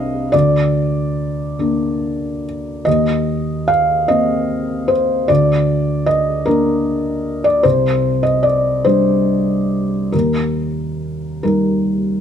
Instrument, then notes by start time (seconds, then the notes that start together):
felt piano
Already playing: C2 C4 D4 D#5 F5
0.32 D2 D5
1.59 A#3 D4
2.85 D#2 D#5
3.68 F5
4.08 A#3 C4 D#5
4.88 C5
5.28 D2 D5
6.06 D#5
6.46 A#3 D4 A#4
7.44 D5
7.63 C2 C5
8.23 D#5
8.43 D5
8.85 G3 D4 C5
10.12 D#2 A#4
11.43 G3 D#4 A#4